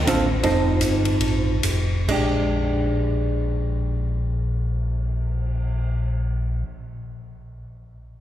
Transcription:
0.07 tonewheel organ A1, hollow-body jazz guitar D3 C4 F4 A4, kick, hi-hat pedal, ride
0.43 tonewheel organ F1, hollow-body jazz guitar F3 C4 D#4 A4, kick, ride
0.80 tonewheel organ G1, kick, hi-hat pedal, ride
1.05 ride
1.20 tonewheel organ A1, kick, ride
1.63 tonewheel organ F1, kick, hi-hat pedal, ride
2.08 tonewheel organ A#1, hollow-body jazz guitar G#3 D4 G4, kick, crash
2.38 cymbal swell

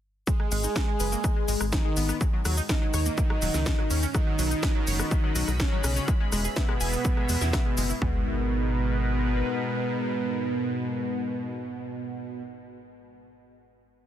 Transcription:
0.27 synth drone G#2 G#3, supersaw synth G#3, synth arpeggio sound G#3, analog synth lead G#4, kick, shaker
0.40 synth arpeggio sound G#3, cross-stick
0.52 analog synth bass G#1, synth arpeggio sound G#3, open hi-hat, shaker
0.64 synth arpeggio sound D#4, shaker
0.76 synth arpeggio sound A#4, kick, cross-stick, snare, shaker
0.88 synth arpeggio sound G#3
1.00 analog synth bass F#1, synth arpeggio sound B4, open hi-hat, shaker
1.12 synth arpeggio sound A#3, shaker
1.24 synth arpeggio sound A#3, kick, cross-stick, shaker
1.36 synth arpeggio sound G#3
1.48 analog synth bass G#1, synth arpeggio sound G#3, open hi-hat, shaker
1.61 analog synth bass G#1, synth arpeggio sound G#3, cross-stick, shaker
1.72 supersaw synth D#3, analog synth lead D#4, kick, snare, shaker
1.85 synth arpeggio sound G#3
1.97 analog synth bass G#1, synth arpeggio sound B3, open hi-hat, shaker
2.09 synth arpeggio sound B3, cross-stick, shaker
2.21 synth arpeggio sound F#3, kick, shaker
2.33 synth arpeggio sound F#3
2.45 analog synth bass D#2, synth arpeggio sound F#3, cross-stick, open hi-hat, shaker
2.57 synth arpeggio sound D#4, shaker
2.69 supersaw synth D#3, analog synth lead D#4, synth arpeggio sound A#4, kick, snare, shaker
2.82 synth arpeggio sound F#3
2.94 analog synth bass D#2, synth arpeggio sound C#5, cross-stick, open hi-hat, shaker
3.06 synth arpeggio sound A#3, shaker
3.18 synth arpeggio sound A#3, kick, shaker
3.30 synth arpeggio sound F#3, cross-stick
3.42 analog synth bass D#1, synth arpeggio sound F#3, open hi-hat, shaker
3.54 analog synth bass C#2, synth arpeggio sound F#3, snare, shaker
3.66 kick, snare, shaker
3.79 synth arpeggio sound F#3, cross-stick
3.90 analog synth bass D#2, synth arpeggio sound C#4, open hi-hat, shaker
4.03 synth arpeggio sound C#4, shaker
4.14 supersaw synth D#3, synth arpeggio sound F#3, analog synth pad C#4 F#4 D#5 B5, analog synth lead D#4, kick, cross-stick, shaker
4.27 synth arpeggio sound F#3
4.39 analog synth bass B1, synth arpeggio sound F#3, open hi-hat, shaker
4.51 synth arpeggio sound D#4, shaker
4.63 synth arpeggio sound B4, kick, cross-stick, snare, shaker
4.75 synth arpeggio sound F#3
4.87 analog synth bass F#1, synth arpeggio sound C#5, open hi-hat, shaker
4.99 synth arpeggio sound B3, cross-stick, shaker
5.11 synth arpeggio sound B3, kick, shaker
5.24 synth arpeggio sound F#3
5.36 analog synth bass B1, synth arpeggio sound F#3, open hi-hat, shaker
5.48 analog synth bass B1, synth arpeggio sound F#3, cross-stick, shaker
5.60 supersaw synth C#3, analog synth lead C#4, kick, snare, shaker
5.72 synth arpeggio sound F#3
5.84 analog synth bass B1, synth arpeggio sound C#4, cross-stick, open hi-hat, shaker
5.96 synth arpeggio sound C#4, shaker
6.08 synth arpeggio sound G#3, analog synth pad B3 G#4 E5, kick, shaker
6.20 synth arpeggio sound G#3
6.32 analog synth bass E1, synth arpeggio sound G#3, cross-stick, open hi-hat, shaker
6.45 synth arpeggio sound G#4, shaker
6.56 supersaw synth B2, analog synth lead B3, synth arpeggio sound E5, kick, snare, shaker
6.69 synth arpeggio sound G#3, cross-stick
6.81 analog synth bass E1, synth arpeggio sound G#5, open hi-hat, shaker
6.93 synth arpeggio sound B3, shaker
7.05 synth arpeggio sound B3, kick, shaker
7.17 synth arpeggio sound G#3, cross-stick
7.29 analog synth bass E2, synth arpeggio sound G#3, open hi-hat, shaker
7.41 analog synth bass E2, synth arpeggio sound E4, snare, shaker
7.53 synth arpeggio sound E5, kick, cross-stick, snare, shaker
7.66 synth arpeggio sound G#3
7.77 analog synth bass F#1, synth arpeggio sound G#3, open hi-hat, shaker
7.90 synth arpeggio sound E4, shaker
8.01 analog synth bass G#1, synth drone G#2 G#3, supersaw synth B2, synth arpeggio sound G#3, analog synth pad G#3 D#4 A#4 B4, analog synth lead B3, kick, floor tom

